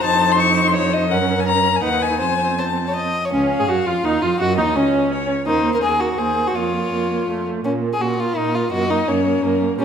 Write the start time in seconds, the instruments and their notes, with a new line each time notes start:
Already playing: violin C5
0.04 cello F2, viola D#4, violin A5
0.32 violin C6
0.40 violin C#6
0.67 violin C6
0.76 violin C#5
0.93 violin D#5
1.11 cello F#2, viola C#4, violin A#4 F#5
1.39 violin G#5
1.48 violin A#5
1.76 violin G#5
1.82 cello D#2, viola D#4, violin B4 F#5
2.02 violin G#5
2.20 cello F2, viola C4, violin C5 G#5
2.58 violin C5 A5
2.87 violin C#5
2.95 violin D#5
3.25 violin C#5
3.32 cello C#2, viola C#4, violin C#4 F5
3.60 cello G#2, viola G#4, violin G#4
3.69 cello F#2, violin F#4, viola F#4
3.86 cello F2, violin F4, viola F4
4.04 cello D#2, violin D#4, viola D#4
4.22 cello F2, violin F4, viola F4
4.40 cello F#2, violin F#4 D#5, viola F#4
4.58 cello D#2, viola D#4, violin D#4
4.76 cello C#2, viola C#4, violin C#4
5.12 violin C#5
5.46 cello D#2, viola A#3, violin D#4 C5
5.64 viola A#3
5.74 violin A#4
5.82 cello D#2, viola A#3, violin G#4 A#4
6.00 viola A#3, violin F#4
6.18 cello D#2, viola A#3, violin G#4 C5
6.36 viola A#3
6.47 violin F#4
6.55 cello F2, viola A#3, violin F4 C#5
6.74 viola A#3
6.91 cello F2, viola A#3
7.11 viola A#3
7.27 cello F2, viola A3
7.46 viola A3
7.64 cello A#2, viola A#3, violin C#4
7.82 viola A#3
7.93 violin G#4
8.00 cello A#2, viola A#3, violin F#4 A#4
8.19 viola A#3, violin F4
8.36 cello A#2, viola A#3, violin D#4
8.54 viola A#3, violin F4
8.72 cello F#2, viola A#3, violin F#4 D#5
8.89 viola A#3, violin D#4
9.08 cello F#2, viola A#3, violin C#4 C#5
9.25 viola A#3
9.43 cello F#2, viola A#3, violin A#4
9.61 viola A#3
9.78 cello A#2, viola G3, violin C#4 A#4